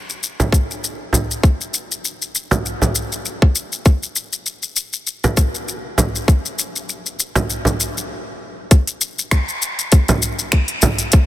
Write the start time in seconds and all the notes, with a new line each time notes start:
0.10 shaker
0.23 shaker
0.40 frame drum, shaker
0.52 kick, shaker
0.71 shaker
0.84 shaker
1.13 frame drum, shaker
1.31 shaker
1.43 kick, shaker
1.61 shaker
1.74 shaker
1.92 shaker
2.05 shaker
2.22 shaker
2.35 shaker
2.51 frame drum, shaker
2.66 shaker
2.82 frame drum, shaker
2.95 shaker
3.12 shaker
3.25 shaker
3.42 kick
3.56 shaker
3.72 shaker
3.86 kick, shaker
4.03 shaker
4.16 shaker
4.33 shaker
4.46 shaker
4.63 shaker
4.76 shaker
4.93 shaker
5.07 shaker
5.24 frame drum, shaker
5.37 kick, shaker
5.55 shaker
5.68 shaker
5.98 frame drum, shaker
6.16 shaker
6.28 kick, shaker
6.46 shaker
6.59 shaker
6.76 shaker
6.89 shaker
7.06 shaker
7.20 shaker
7.35 frame drum, shaker
7.50 shaker
7.65 frame drum, shaker
7.80 shaker
7.98 shaker
8.71 kick, closed hi-hat, shaker
8.87 closed hi-hat, shaker
9.01 shaker
9.19 shaker
9.31 finger snap, kick, closed hi-hat, shaker
9.49 shaker
9.62 shaker
9.79 closed hi-hat, shaker
9.92 kick, closed hi-hat, shaker
10.08 closed hi-hat, frame drum, shaker
10.22 shaker
10.39 shaker
10.52 finger snap, kick, closed hi-hat, shaker
10.68 closed hi-hat
10.82 frame drum, shaker
10.98 closed hi-hat, shaker
11.12 kick, closed hi-hat, shaker